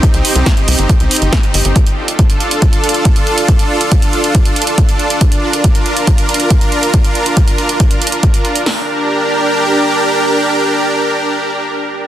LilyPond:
<<
  \new Staff \with { instrumentName = "Supersaw synth" } { \time 4/4 \key g \minor \tempo 4 = 139 << { <ees' g'>1 | <f' a'>1~ | <f' a'>1 | <f' bes'>1~ |
<f' bes'>1 | <d' g' bes'>1~ | <d' g' bes'>1 | } \\ { c'1 | d'1~ | d'1~ | d'1~ |
d'1 | r1 | r1 | } >> }
  \new Staff \with { instrumentName = "Analog synth bass" } { \clef bass \time 4/4 \key g \minor r16 c,16 r16 c,16 r8 c,16 g,,16 r16 c,16 r16 g,,16 r8 g,,16 g,,16 | r1 | r1 | r1 |
r1 | r1 | r1 | }
  \new DrumStaff \with { instrumentName = "Drums" } \drummode { \time 4/4 <hh bd>16 hh16 hho16 hh16 <hh bd sn>16 hh16 hho16 hh16 <hh bd>16 hh16 hho32 hh32 hh16 <hh bd sn>16 hh16 hho16 hh16 | <hh bd>16 hh8 hh16 <hh bd>16 hh16 hh16 hh16 <hh bd>16 hh16 hh32 hh32 hh16 <hh bd>16 hh16 hh16 hh16 | <hh bd>16 hh8 hh16 <hh bd>16 hh16 hh16 hh16 <hh bd>16 hh16 hh32 hh32 hh16 <hh bd>16 hh16 hh16 hh16 | <hh bd>16 hh8 hh16 <hh bd>16 hh16 hh16 hh16 <hh bd>16 hh16 hh32 hh32 hh16 <hh bd>16 hh16 hh16 hh16 |
<hh bd>16 hh16 hh16 hh16 <hh bd>16 hh16 hh16 hh16 <hh bd>16 hh16 hh32 hh32 hh16 <hh bd>16 hh16 hh16 hh16 | <hho sn>4 r4 r4 r4 | r4 r4 r4 r4 | }
>>